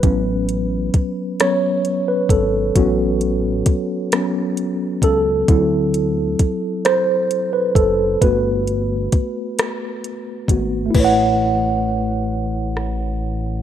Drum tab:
CC |------|------|------|------|
HH |xxxxxx|xxxxxx|xxxxxx|xxxxxx|
SD |---r--|---r--|---r--|---r--|
BD |o-o--o|o-o--o|o-o--o|o-o--o|

CC |x-----|
HH |------|
SD |----r-|
BD |o-----|